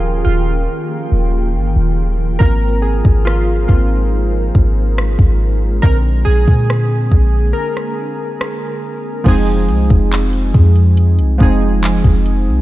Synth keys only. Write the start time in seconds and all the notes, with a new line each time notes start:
Already playing: F3 C#4 F4 G4 G#4 A#4
0.25 F4
2.39 F3 A#3 C4 A#4
2.82 G#4
3.25 F4
3.68 F3 A#3 C4 F4
5.82 D3 G#3 C4 A#4
6.25 G#4
7.53 A#4
9.24 F3 G#3 C4 D#4
9.28 G#4
11.38 F3 G#3 C4 D#4
11.43 G#4